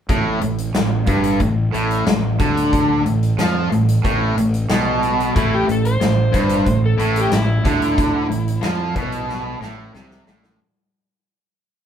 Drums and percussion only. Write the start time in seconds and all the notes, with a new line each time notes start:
0.09 kick, closed hi-hat
0.41 closed hi-hat
0.58 closed hi-hat
0.74 snare, closed hi-hat
1.06 kick, closed hi-hat
1.24 closed hi-hat
1.40 kick, closed hi-hat
1.74 closed hi-hat
1.91 closed hi-hat
2.06 snare, closed hi-hat
2.39 kick, closed hi-hat
2.57 closed hi-hat
2.73 kick, closed hi-hat
3.06 closed hi-hat
3.23 closed hi-hat
3.39 snare, closed hi-hat
3.72 closed hi-hat
3.89 closed hi-hat
4.05 kick, closed hi-hat
4.38 closed hi-hat
4.54 closed hi-hat
4.69 snare, closed hi-hat
5.03 closed hi-hat
5.20 closed hi-hat
5.36 kick, closed hi-hat
5.69 closed hi-hat
5.85 closed hi-hat
6.01 snare, closed hi-hat
6.34 kick, closed hi-hat
6.49 snare, closed hi-hat
6.66 kick, closed hi-hat
6.99 closed hi-hat
7.16 closed hi-hat
7.31 snare, closed hi-hat
7.65 kick, closed hi-hat
7.82 closed hi-hat
7.98 kick, closed hi-hat
8.31 closed hi-hat
8.48 closed hi-hat
8.63 snare, closed hi-hat
8.96 kick, closed hi-hat
9.12 closed hi-hat
9.29 snare
9.62 snare
9.95 snare
10.11 snare
10.27 snare
10.44 snare